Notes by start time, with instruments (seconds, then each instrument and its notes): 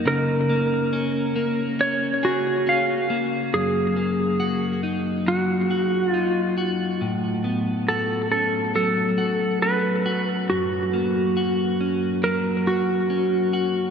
Already playing: clean electric guitar A#3 D#4 F#4
0.05 clean electric guitar C#3, electric slide guitar A#4
0.49 clean electric guitar A#3
0.93 clean electric guitar C#4
1.36 clean electric guitar A#3
1.79 clean electric guitar C#4, electric slide guitar C#5
2.23 electric slide guitar F#4, clean electric guitar G#4
2.67 clean electric guitar C#4, electric slide guitar F5
3.10 clean electric guitar A#3
3.53 clean electric guitar F#2, electric slide guitar G#4
3.96 clean electric guitar A#3
4.40 clean electric guitar F#4
4.83 clean electric guitar D#4
5.27 clean electric guitar F#3, electric slide guitar F#4
5.71 clean electric guitar F#4
6.10 clean electric guitar D#4, electric slide guitar F4
6.58 clean electric guitar F#4
7.01 clean electric guitar A2
7.44 clean electric guitar B3
7.88 clean electric guitar F#4, electric slide guitar A4
8.31 clean electric guitar C#4, electric slide guitar A4
8.75 clean electric guitar F#3, electric slide guitar A4
9.18 clean electric guitar F#4
9.62 clean electric guitar C#4, electric slide guitar B4
10.06 clean electric guitar F#4
10.50 clean electric guitar F#2, electric slide guitar F#4
10.93 clean electric guitar A#3
11.37 clean electric guitar F#4
11.81 clean electric guitar C#4
12.23 clean electric guitar F#3, electric slide guitar A#4
12.67 clean electric guitar F#4, electric slide guitar F#4
13.10 clean electric guitar C#4
13.53 clean electric guitar F#4